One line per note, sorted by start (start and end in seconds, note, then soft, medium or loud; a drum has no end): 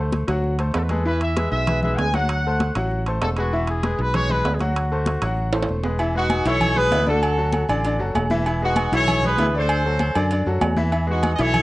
0.00 0.23 D2 medium
0.00 0.23 A3 medium
0.00 0.23 A4 medium
0.00 0.23 C5 medium
0.13 high conga loud
0.13 high timbale medium
0.13 low timbale soft
0.28 0.71 D2 medium
0.28 0.53 F#3 medium
0.28 0.54 F#4 medium
0.28 0.54 F#5 medium
0.28 high timbale medium
0.44 high conga soft
0.59 0.85 A3 medium
0.59 0.85 A4 medium
0.59 0.85 C5 medium
0.59 high conga soft
0.59 high timbale medium
0.74 1.47 E2 medium
0.74 0.79 B4 medium
0.74 high conga soft
0.74 high timbale medium
0.74 low timbale medium
0.79 0.83 A4 medium
0.83 0.91 B4 medium
0.89 1.03 G#3 medium
0.89 1.03 G#4 medium
0.89 1.06 A4 medium
0.89 1.03 B4 medium
0.89 high conga medium
0.89 high timbale medium
1.05 1.31 E3 medium
1.05 1.31 E4 medium
1.05 1.20 B4 medium
1.05 1.31 E5 medium
1.05 high conga soft
1.21 1.50 E5 medium
1.21 high conga soft
1.21 high timbale medium
1.37 1.62 G#3 medium
1.37 1.62 G#4 medium
1.37 1.62 B4 medium
1.37 high conga medium
1.37 high timbale medium
1.37 low timbale medium
1.52 1.95 B1 loud
1.52 1.81 E5 loud
1.52 high conga soft
1.67 1.81 G#3 medium
1.67 1.81 G#4 medium
1.67 1.81 B4 medium
1.67 high conga soft
1.67 low conga medium
1.67 high timbale medium
1.83 2.09 G#3 medium
1.83 2.09 G#4 medium
1.83 2.09 B4 medium
1.83 1.97 E5 medium
1.83 high conga soft
1.83 low conga medium
1.97 2.70 D2 medium
1.97 2.13 G#5 loud
1.97 high conga soft
1.97 high timbale medium
1.97 low timbale medium
2.14 2.40 F#3 medium
2.14 2.40 F#4 medium
2.14 2.76 F#5 medium
2.14 2.40 F#5 medium
2.14 high conga medium
2.14 high timbale medium
2.29 high timbale medium
2.44 2.71 A3 medium
2.44 2.71 A4 medium
2.44 2.71 C5 medium
2.44 high conga soft
2.60 high conga medium
2.60 high timbale medium
2.60 low timbale medium
2.75 3.18 A1 medium
2.75 3.01 F#3 medium
2.75 3.01 F#4 medium
2.75 3.01 F#5 medium
2.75 high conga soft
2.75 high timbale medium
2.91 high conga soft
3.06 3.32 A3 medium
3.06 3.32 A4 medium
3.06 3.32 C5 medium
3.06 high conga soft
3.06 high timbale medium
3.22 3.93 E1 medium
3.22 3.29 A4 medium
3.22 high conga soft
3.22 high timbale medium
3.22 low timbale medium
3.36 3.50 G#3 medium
3.36 3.67 F#4 medium
3.36 3.50 G#4 medium
3.36 3.50 B4 medium
3.36 high timbale medium
3.52 3.78 E3 medium
3.52 3.78 E4 medium
3.52 3.78 E5 medium
3.52 high conga soft
3.67 3.98 G#4 medium
3.67 high conga soft
3.67 high timbale medium
3.83 4.09 G#3 medium
3.83 4.09 G#4 medium
3.83 4.09 B4 medium
3.83 high conga loud
3.83 high timbale medium
3.83 low timbale soft
3.98 4.42 B1 loud
3.98 4.15 B4 loud
3.98 high conga soft
4.14 4.27 G#3 medium
4.14 4.27 G#4 medium
4.14 4.27 B4 medium
4.14 4.30 C#5 loud
4.14 high conga soft
4.14 low conga medium
4.14 high timbale medium
4.29 4.55 G#3 medium
4.29 4.55 G#4 medium
4.29 4.55 B4 medium
4.29 4.54 B4 loud
4.29 high conga soft
4.29 low conga medium
4.44 5.16 D2 medium
4.44 high conga soft
4.44 high timbale medium
4.44 low timbale medium
4.55 4.61 G#4 medium
4.59 4.86 F#3 medium
4.59 4.86 F#4 medium
4.59 5.69 F#4 medium
4.59 4.86 F#5 medium
4.59 high conga medium
4.59 high timbale medium
4.76 high timbale medium
4.90 5.17 A3 medium
4.90 5.17 A4 medium
4.90 5.17 C5 medium
4.90 high conga soft
5.06 high conga medium
5.06 high timbale medium
5.06 low timbale medium
5.21 5.65 A1 medium
5.21 5.48 F#3 medium
5.21 5.48 F#4 medium
5.21 5.48 F#5 medium
5.21 high conga soft
5.21 high timbale medium
5.37 high conga soft
5.52 5.79 A3 medium
5.52 5.79 A4 medium
5.52 5.79 C5 medium
5.52 high conga soft
5.52 high timbale loud
5.63 high timbale loud
5.68 6.40 E1 medium
5.68 high conga soft
5.84 5.96 G#3 medium
5.84 5.96 G#4 medium
5.84 5.97 B4 medium
5.84 low timbale medium
5.98 6.12 E3 medium
5.98 6.12 E4 medium
5.98 6.12 E5 medium
5.98 high conga soft
5.98 low agogo loud
6.14 6.40 G#3 medium
6.14 6.45 D#4 medium
6.14 6.44 F#4 medium
6.14 6.40 G#4 medium
6.14 6.41 B4 medium
6.14 high conga soft
6.30 high conga medium
6.30 low timbale medium
6.30 low agogo medium
6.45 6.88 B1 loud
6.45 6.71 E3 medium
6.45 6.71 E4 loud
6.45 6.78 A4 medium
6.45 6.77 C#5 loud
6.45 6.72 E5 loud
6.45 high conga soft
6.45 low agogo medium
6.61 high conga soft
6.61 low conga medium
6.61 low agogo loud
6.76 6.89 G#3 medium
6.76 6.89 G#4 medium
6.76 7.08 G#4 medium
6.76 6.89 B4 medium
6.76 7.07 B4 loud
6.76 high conga soft
6.76 low conga medium
6.91 7.63 D2 medium
6.91 7.04 E3 medium
6.91 7.04 E4 medium
6.91 7.05 E5 medium
6.91 high conga medium
6.91 low timbale medium
6.91 low agogo medium
7.06 7.32 D3 medium
7.06 7.32 D4 loud
7.06 7.65 F#4 medium
7.06 7.65 A4 medium
7.06 7.32 D5 medium
7.06 high conga medium
7.22 high conga soft
7.22 low agogo loud
7.37 7.63 F#3 medium
7.37 7.63 F#4 medium
7.37 7.64 A4 medium
7.37 high conga soft
7.53 high conga medium
7.53 low timbale medium
7.53 low agogo medium
7.68 7.97 A1 loud
7.68 7.82 D3 loud
7.68 7.82 D4 medium
7.68 7.82 D5 loud
7.68 high conga soft
7.68 low agogo loud
7.84 7.97 D3 medium
7.84 7.98 D4 medium
7.84 7.98 D5 medium
7.84 high conga soft
7.84 low agogo medium
7.99 8.14 F#1 medium
7.99 8.25 F#3 medium
7.99 8.25 F#4 medium
7.99 8.25 A4 medium
7.99 high conga soft
8.15 8.87 E1 medium
8.15 high conga medium
8.15 low timbale medium
8.15 low agogo loud
8.30 8.43 E3 loud
8.30 8.43 E4 loud
8.30 8.44 E5 loud
8.30 high conga medium
8.46 8.59 E3 medium
8.46 8.59 E4 medium
8.46 8.59 E5 medium
8.46 high conga soft
8.46 low agogo loud
8.61 8.87 G#3 medium
8.61 8.91 D#4 medium
8.61 8.91 F#4 medium
8.61 8.87 G#4 medium
8.61 8.87 B4 medium
8.61 high conga soft
8.76 high conga loud
8.76 low timbale medium
8.76 low agogo loud
8.92 9.35 B1 loud
8.92 9.18 E3 medium
8.92 9.18 E4 loud
8.92 9.22 A4 medium
8.92 9.22 C#5 loud
8.92 9.18 E5 loud
8.92 high conga soft
8.92 low agogo medium
9.08 high conga soft
9.08 low conga medium
9.08 low agogo loud
9.23 9.36 G#3 medium
9.23 9.36 G#4 medium
9.23 9.53 G#4 medium
9.23 9.36 B4 medium
9.23 9.54 B4 loud
9.23 high conga soft
9.23 low conga medium
9.38 10.10 D2 medium
9.38 9.52 E3 medium
9.38 9.52 E4 medium
9.38 9.52 E5 medium
9.38 high conga medium
9.38 low timbale medium
9.38 low agogo medium
9.54 9.79 D3 medium
9.54 9.80 D4 loud
9.54 10.17 A4 medium
9.54 10.18 C5 loud
9.54 9.80 D5 loud
9.69 low agogo loud
9.85 10.10 F#3 medium
9.85 10.11 F#4 medium
9.85 10.11 A4 medium
9.85 high conga soft
9.99 high conga medium
9.99 low timbale medium
9.99 low agogo medium
10.15 10.44 F#2 loud
10.15 10.29 D3 loud
10.15 10.29 D4 medium
10.15 10.29 D5 loud
10.15 high conga soft
10.15 low agogo loud
10.31 10.45 D3 medium
10.31 10.44 D4 medium
10.31 10.45 D5 medium
10.31 high conga soft
10.31 low agogo medium
10.46 10.61 F#2 medium
10.46 10.72 F#3 medium
10.46 10.72 F#4 medium
10.46 10.72 A4 medium
10.46 high conga soft
10.61 11.34 E2 medium
10.61 high conga medium
10.61 low timbale medium
10.61 low agogo loud
10.77 10.90 E3 medium
10.77 10.90 E4 loud
10.77 10.90 E5 loud
10.77 high conga medium
10.92 11.05 E3 medium
10.92 11.05 E4 medium
10.92 11.05 E5 medium
10.92 high conga soft
10.92 low agogo medium
11.07 11.33 G#3 medium
11.07 11.32 D#4 medium
11.07 11.31 F#4 medium
11.07 11.33 G#4 medium
11.07 11.33 B4 medium
11.07 high conga soft
11.23 high conga loud
11.23 low timbale medium
11.23 low agogo loud
11.34 11.40 D#5 medium
11.39 11.62 B1 loud
11.39 11.62 E3 medium
11.39 11.62 E4 loud
11.39 11.62 A4 medium
11.39 11.62 C#5 loud
11.39 11.62 E5 medium
11.39 high conga soft
11.39 low agogo medium
11.54 high conga soft
11.54 low conga medium
11.54 low agogo loud